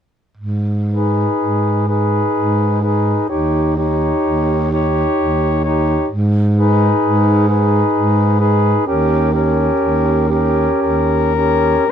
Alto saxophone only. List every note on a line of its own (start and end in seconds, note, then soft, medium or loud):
0.89 1.86 G#4 soft
1.89 2.81 G#4 soft
2.84 3.29 G#4 soft
3.30 3.76 G4 soft
3.77 4.69 G4 soft
4.71 5.61 G4 soft
5.64 6.08 G4 soft
6.55 7.45 G#4 soft
7.49 8.38 G#4 soft
8.40 8.85 G#4 soft
8.87 9.33 G4 soft
9.33 10.28 G4 soft
10.29 11.33 G4 soft
11.36 11.89 G4 soft